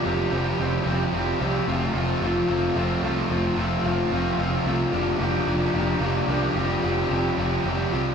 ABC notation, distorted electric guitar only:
X:1
M:3/4
L:1/8
Q:1/4=111
K:F
V:1 name="Distorted electric guitar"
[F,G,CG] [F,G,CG] [F,G,CG] [F,G,CG] [F,G,CG] [F,G,CG] | [F,A,CF] [F,A,CF] [F,A,CF] [F,A,CF] [F,A,CF] [F,A,CF] | [F,A,CF] [F,A,CF] [F,A,CF] [F,A,CF] [F,A,CF] [F,A,CF] | [F,B,DG] [F,B,DG] [F,B,DG] [F,B,DG] [F,B,DG] [F,B,DG] |
[F,G,CG] [F,G,CG] [F,G,CG] [F,G,CG] [F,G,CG] [F,G,CG] |]